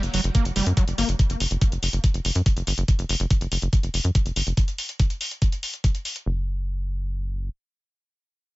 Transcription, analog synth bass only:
0.03 0.09 F#1 medium
0.14 0.20 F#1 loud
0.24 0.31 F#1 medium
0.45 0.52 F#1 medium
0.56 0.62 F#1 loud
0.66 0.73 F#2 medium
0.88 0.94 F#1 medium
0.98 1.04 G1 loud
1.09 1.15 F#1 medium
1.30 1.36 F#1 medium
1.40 1.47 F#1 loud
1.51 1.57 F#1 medium
1.72 1.78 F#1 medium
1.83 1.89 F#1 loud
1.93 2.00 F#1 medium
2.14 2.21 F#1 medium
2.25 2.31 F#1 loud
2.35 2.42 F#2 medium
2.57 2.63 F#1 medium
2.67 2.73 G1 loud
2.78 2.84 F#1 medium
2.99 3.05 F#1 medium
3.09 3.16 F#1 loud
3.20 3.26 F#1 medium
3.41 3.47 F#1 medium
3.52 3.58 F#1 loud
3.62 3.69 F#1 medium
3.83 3.90 F#1 medium
3.94 4.00 F#1 loud
4.04 4.11 F#2 loud
4.26 4.32 F#1 medium
4.36 4.43 G1 loud
4.47 4.53 F#1 medium
6.26 7.49 F#1 loud

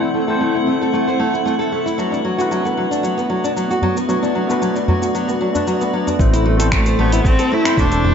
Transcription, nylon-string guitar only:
0.02 0.09 E4 medium
0.14 0.22 A3 medium
0.28 0.40 A4 medium
0.40 0.54 A3 medium
0.55 0.66 E4 medium
0.67 0.80 A3 medium
0.81 0.88 A4 medium
0.93 1.07 A3 medium
1.07 1.18 C5 medium
1.19 1.32 A3 medium
1.34 1.41 E4 medium
1.45 1.54 A3 medium
1.59 1.71 A4 medium
1.72 1.85 A3 medium
1.86 1.98 E4 medium
1.98 2.12 F#3 medium
2.12 2.19 D4 medium
2.25 2.38 F#3 medium
2.38 2.50 F#4 medium
2.51 2.64 F#3 medium
2.65 2.72 B3 medium
2.77 2.85 F#3 medium
2.91 3.03 D4 medium
3.03 3.17 F#3 medium
3.18 3.29 B3 medium
3.30 3.43 F#3 medium
3.44 3.51 D4 medium
3.56 3.70 F#3 medium
3.71 3.82 F#4 medium
3.83 3.95 F#3 medium
3.97 4.04 B3 medium
4.09 4.17 F#3 medium
4.23 4.34 D4 medium
4.35 4.49 F#3 medium
4.49 4.61 B3 medium
4.62 4.75 F#3 medium
4.76 4.83 D4 medium
4.88 5.01 F#3 medium
5.02 5.13 F#4 medium
5.15 5.27 F#3 medium
5.28 5.35 B3 medium
5.41 5.49 F#3 medium
5.55 5.66 D4 medium
5.67 5.80 F#3 medium
5.81 5.93 B3 medium
5.93 6.07 F#3 medium
6.07 6.14 D4 medium
6.19 6.33 A3 medium
6.34 6.45 E4 medium
6.45 6.59 A3 medium
6.60 6.67 A4 medium
6.73 6.86 A3 medium
6.86 6.97 C5 medium
6.99 7.11 A3 medium
7.13 7.20 E4 medium
7.25 7.33 A3 medium
7.39 7.51 A4 medium
7.52 7.65 A3 medium
7.65 7.77 E4 medium
7.78 7.91 A3 medium
7.92 7.99 A4 medium
8.04 8.14 A3 medium

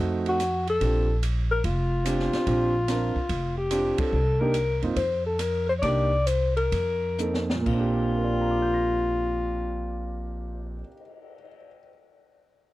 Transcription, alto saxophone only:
0.29 0.66 F#4 medium
0.69 1.20 A4 medium
1.51 1.63 A#4 medium
1.65 3.54 F4 medium
3.58 4.01 G4 medium
3.99 4.42 A4 medium
4.40 4.82 A#4 medium
4.96 5.23 C5 medium
5.26 5.41 A4 medium
5.40 5.68 A#4 medium
5.69 5.73 C5 medium
5.79 5.83 C#5 medium
5.79 6.28 D5 loud
6.27 6.56 C5 medium
6.57 7.46 A#4 medium
7.67 10.82 F4 medium

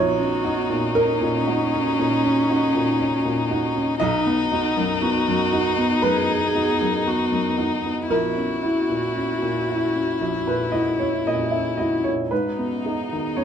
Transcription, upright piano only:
0.00 1.93 A#1 medium
0.00 0.91 C#5 loud
0.19 0.59 C#4 medium
0.45 0.67 D#4 medium
0.45 0.67 F#4 medium
0.70 1.10 A#2 medium
0.95 1.35 C#4 medium
0.95 3.45 A#4 medium
1.21 1.61 A#2 medium
1.47 1.69 D#4 medium
1.47 1.69 F#4 medium
1.73 2.13 C#4 medium
1.99 2.38 A#2 medium
2.24 2.64 C#4 medium
2.50 2.72 D#4 medium
2.50 2.72 F#4 medium
2.74 3.14 A#2 medium
2.99 3.39 C#4 medium
3.25 3.65 A#2 medium
3.51 3.73 D#4 medium
3.51 3.73 F#4 medium
3.76 4.00 C#4 medium
4.00 5.99 B1 medium
4.00 5.98 D#5 loud
4.26 4.66 B3 medium
4.52 4.74 D#4 medium
4.52 4.74 F#4 medium
4.77 5.16 F#2 medium
5.02 5.42 B3 medium
5.28 5.68 F#2 medium
5.53 5.75 D#4 medium
5.53 5.75 F#4 medium
5.78 6.18 B3 medium
6.02 6.43 F#2 medium
6.02 8.06 B4 loud
6.29 6.69 B3 medium
6.55 6.77 D#4 medium
6.55 6.78 F#4 medium
6.81 7.22 F#2 medium
7.06 7.48 B3 soft
7.32 7.73 F#2 soft
7.57 7.81 D#4 soft
7.57 7.81 F#4 medium
7.84 8.10 B3 soft
8.10 10.16 A#1 medium
8.10 10.42 A#4 medium
8.36 8.78 C#4 soft
8.63 8.86 E4 soft
8.63 8.86 F#4 soft
8.89 9.31 A#2 soft
9.16 9.57 C#4 soft
9.42 9.83 A#2 soft
9.70 9.92 E4 soft
9.70 9.92 F#4 soft
9.95 10.37 C#4 soft
10.21 12.27 A#1 soft
10.47 10.89 A#2 soft
10.47 10.71 B4 medium
10.72 10.97 E4 soft
10.72 10.97 F#4 soft
10.72 10.97 D#5 medium
10.99 11.42 C#4 soft
10.99 11.23 C#5 medium
11.27 11.68 A#2 soft
11.27 11.51 D#5 medium
11.51 11.95 C#4 soft
11.51 11.76 E5 soft
11.77 12.02 E4 soft
11.77 12.02 F#4 soft
11.77 12.02 D#5 medium
12.04 12.32 A#2 soft
12.04 12.29 C#5 medium
12.31 13.44 G#2 medium
12.31 13.32 B4 medium
12.59 13.00 B3 soft
12.85 13.08 D#4 soft
12.85 13.08 G#4 soft
13.13 13.44 D#3 soft
13.37 13.44 B3 soft
13.37 13.44 C#5 medium

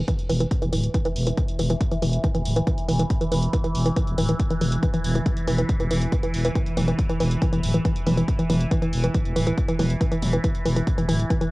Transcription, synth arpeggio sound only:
0.08 0.11 E3 loud
0.30 0.32 E3 loud
0.40 0.43 E3 loud
0.62 0.65 E3 loud
0.73 0.75 E3 loud
0.94 0.97 E3 loud
1.05 1.08 E3 loud
1.27 1.29 E3 loud
1.37 1.40 E3 loud
1.59 1.62 E3 loud
1.70 1.73 E3 loud
1.91 1.94 E3 loud
2.02 2.05 E3 loud
2.24 2.27 E3 loud
2.35 2.37 E3 loud
2.56 2.59 E3 loud
2.67 2.70 E3 loud
2.89 2.91 E3 loud
2.99 3.02 E3 loud
3.21 3.24 E3 loud
3.32 3.34 E3 loud
3.53 3.56 E3 loud
3.64 3.67 E3 loud
3.86 3.88 E3 loud
3.96 3.99 E3 loud
4.18 4.21 E3 loud
4.29 4.32 E3 loud
4.50 4.53 E3 loud
4.61 4.64 E3 loud
4.83 4.85 E3 loud
4.94 4.96 E3 loud
5.15 5.18 E3 loud
5.26 5.29 E3 loud
5.47 5.50 E3 loud
5.58 5.61 E3 loud
5.80 5.83 E3 loud
5.91 5.93 E3 loud
6.12 6.15 E3 loud
6.23 6.26 E3 loud
6.45 6.47 E3 loud
6.55 6.58 E3 loud
6.77 6.80 E3 loud
6.88 6.91 E3 loud
7.09 7.12 E3 loud
7.20 7.23 E3 loud
7.42 7.44 E3 loud
7.53 7.55 E3 loud
7.74 7.77 E3 loud
7.85 7.88 E3 loud
8.07 8.09 E3 loud
8.17 8.20 E3 loud
8.39 8.42 E3 loud
8.50 8.52 E3 loud
8.71 8.74 E3 loud
8.82 8.85 E3 loud
9.04 9.06 E3 loud
9.14 9.17 E3 loud
9.36 9.39 E3 loud
9.47 9.50 E3 loud
9.68 9.71 E3 loud
9.79 9.82 E3 loud
10.01 10.03 E3 loud
10.12 10.14 E3 loud
10.33 10.36 E3 loud
10.44 10.47 E3 loud
10.66 10.68 E3 loud
10.76 10.79 E3 loud
10.98 11.01 E3 loud
11.09 11.11 E3 loud
11.30 11.33 E3 loud
11.41 11.44 E3 loud

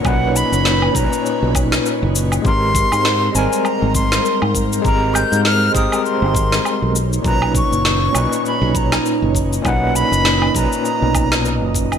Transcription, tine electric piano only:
0.00 0.92 A#2 medium
0.00 0.03 C#4 medium
0.00 0.91 C#4 medium
0.00 0.05 D#4 medium
0.00 0.07 B4 loud
0.05 0.92 D#4 medium
0.05 0.93 B4 loud
0.92 2.40 A#2 medium
0.92 2.41 C#4 medium
0.92 2.42 D#4 medium
0.98 2.43 B4 medium
2.42 3.30 G#3 medium
2.42 3.31 C4 medium
2.42 3.32 G4 medium
2.48 3.33 A#4 loud
3.32 4.82 G3 medium
3.32 4.80 G#3 medium
3.32 4.81 C4 medium
3.38 4.83 A#4 medium
4.82 5.70 G#3 medium
4.82 5.71 C4 medium
4.82 5.72 G4 medium
4.88 5.73 A#4 loud
5.72 6.92 G#3 medium
5.72 6.93 C4 medium
5.72 6.94 G4 medium
5.78 6.95 A#4 medium
7.22 8.10 A#2 medium
7.22 8.11 C#4 medium
7.22 8.12 D#4 medium
7.28 8.13 B4 loud
8.12 9.60 A#2 medium
8.12 9.61 C#4 medium
8.12 9.62 D#4 medium
8.18 9.63 B4 medium
9.62 10.50 A#2 loud
9.62 10.51 C#4 medium
9.62 10.52 D#4 medium
9.68 10.53 B4 loud
10.52 11.98 A#2 medium
10.52 11.98 C#4 medium
10.56 11.98 D#4 medium
10.56 11.98 B4 loud

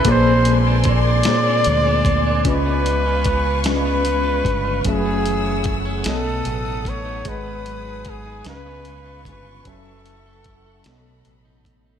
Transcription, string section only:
0.00 4.81 G#5 medium
0.05 2.43 A#4 medium
0.05 2.43 D5 medium
0.05 2.43 C6 medium
2.46 4.84 B4 medium
2.46 4.84 F5 medium
2.46 4.83 C#6 medium
4.85 6.04 C#5 medium
4.85 8.42 F#5 medium
4.85 6.04 E6 medium
6.05 9.62 B4 medium
6.05 7.24 D#6 medium
7.26 9.63 G#5 medium
7.26 8.45 D#6 medium
8.45 9.64 F5 medium
8.45 10.83 C#6 medium
9.65 11.99 A4 medium
9.65 10.84 E5 medium
9.65 11.99 F#5 medium
10.85 11.99 D#5 medium
10.85 11.99 B5 medium

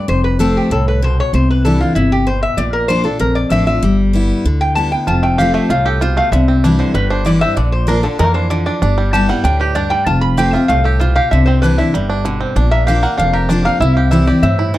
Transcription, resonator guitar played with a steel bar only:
0.09 0.24 C5 medium
0.24 0.39 B4 medium
0.40 0.55 A4 medium
0.57 0.71 G4 medium
0.72 0.87 A4 medium
0.88 1.02 B4 medium
1.04 1.19 C5 medium
1.20 1.34 C#5 loud
1.35 1.49 C5 medium
1.51 1.65 B4 medium
1.65 1.80 A4 medium
1.81 1.95 F4 medium
1.95 2.11 E4 medium
2.12 2.27 G4 loud
2.27 2.42 C5 medium
2.43 2.58 E5 loud
2.57 2.73 D5 medium
2.73 2.88 A#4 medium
2.88 3.04 C5 loud
3.05 3.20 A4 medium
3.20 3.36 A#4 medium
3.35 3.51 D5 medium
3.52 3.66 E5 medium
3.67 3.96 E5 medium
4.61 4.75 G5 loud
4.75 4.91 A5 loud
4.92 5.07 G5 medium
5.07 5.23 A5 loud
5.23 5.38 G5 loud
5.38 5.54 F5 medium
5.55 5.70 E5 medium
5.71 5.86 F5 loud
5.86 6.01 A4 medium
6.02 6.17 C5 loud
6.17 6.32 F5 loud
6.32 6.76 E5 medium
6.79 6.94 C5 medium
6.94 7.10 B4 medium
7.10 7.25 C5 medium
7.26 7.41 D5 loud
7.41 7.56 E5 loud
7.56 7.72 D5 medium
7.72 7.88 C5 medium
7.88 8.03 A#4 medium
8.03 8.18 A4 medium
8.20 8.34 A#4 medium
8.34 8.50 C5 loud
8.50 8.65 D5 loud
8.66 8.95 D5 medium
9.13 9.28 A5 medium
9.29 9.43 F#5 medium
9.44 9.59 G5 loud
9.60 9.75 B4 medium
9.75 9.91 D5 medium
9.90 10.06 G5 loud
10.06 10.21 A5 medium
10.21 10.37 B5 loud
10.38 10.53 G5 medium
10.53 10.68 E5 medium
10.68 10.84 F5 loud
10.84 10.99 A4 medium
10.99 11.15 C5 medium
11.15 11.31 F5 loud
11.31 11.47 E5 medium
11.46 11.61 C5 medium
11.62 11.78 B4 medium
11.78 12.21 E5 medium
12.71 12.86 E5 loud
12.87 13.02 F5 medium
13.03 13.18 F#5 loud
13.18 13.34 F5 medium
13.33 13.49 A#4 medium
13.49 13.65 D5 medium
13.65 13.80 F5 loud
13.80 13.96 E5 medium
13.96 14.11 F5 loud
14.11 14.27 E5 medium
14.27 14.43 D5 medium
14.43 14.72 E5 medium

